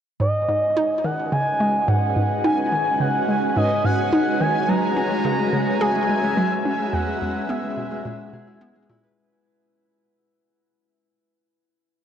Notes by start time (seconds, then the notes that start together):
0.20 G#2 G#3 D#5 G#5
0.30 C#4
0.37 F#4
0.48 G#2
0.56 B4
0.76 D#4
1.04 D#3 F#5
1.32 C#3 G#5
1.52 D#5
1.60 G#3
1.88 G#2 F#5
2.16 G#2
2.44 D#4 G#5
2.72 D#3
3.00 C#3 F#5
3.29 G#3
3.56 G#2 D#5
3.85 G#2 F#5
4.13 D#4
4.41 D#3 G#5
4.69 F#3 G#3 A#5
4.97 G#3 C#4
5.11 G#3
5.25 C#3
5.31 E5
5.39 G#3
5.53 C#3 G#3
5.81 G#3 G#4 G#5
5.95 G#3
6.09 G#3
6.23 G#3
6.37 F#3 G#3
6.65 G#3 C#4
6.79 G#3
6.93 E2 F#5
7.07 G#3
7.21 E2 G#3
7.49 G#3 B3 E5
7.63 G#3
7.77 B2
7.91 G#3
8.05 A#2 G#3
8.33 B2 G#4
8.47 E4
8.61 B3
8.75 G#3
8.89 A#2 E4
9.03 B4